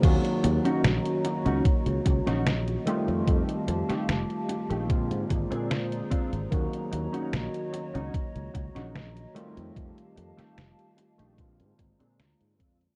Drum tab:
CC |x---------------|----------------|----------------|----------------|
HH |xxxxxxxxxxxxxxxx|xxxxxxxxxxxxxxxx|xxxxxxxxxxxxxxxx|xxxxxxxxxxxxxxxx|
SD |----o------oo---|---oo-------o---|----o------oo---|---oo-------o---|
BD |o-------o-o-----|o-------o-o---o-|o-------o-o-----|o-------o-o---o-|